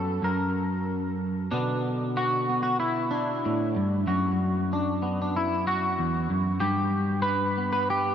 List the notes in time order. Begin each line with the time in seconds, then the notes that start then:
Already playing: F#2 F#3 B3 C#4 A4
0.22 F#2 A#4
1.51 B2 D3 B3 D4
2.17 F#4
2.49 B3
2.63 F#4
2.80 E4
3.11 D4
3.45 A2
3.76 G2
4.07 F#2 F#4
4.73 D4
5.02 B3
5.22 D4
5.36 E4
5.67 F#4
5.99 E2
6.30 F#2
6.60 G2 G4
7.22 B4
7.58 B3
7.73 B4
7.90 G4